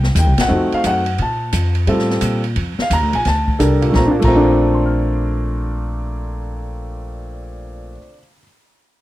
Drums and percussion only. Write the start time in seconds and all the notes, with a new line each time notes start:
0.03 snare
0.15 kick, hi-hat pedal, ride
0.38 snare, ride
0.72 ride
0.84 kick, hi-hat pedal, ride
1.06 ride
1.18 kick, ride
1.52 kick, hi-hat pedal, ride
1.75 ride
1.87 kick, ride
1.99 snare
2.10 snare
2.21 kick, hi-hat pedal, ride
2.44 ride
2.56 kick, ride
2.79 snare
2.91 kick, hi-hat pedal, ride
3.13 ride
3.25 kick, snare, ride
3.48 kick
3.60 kick, hi-hat pedal, ride
3.82 ride
3.94 kick, snare
4.22 kick, crash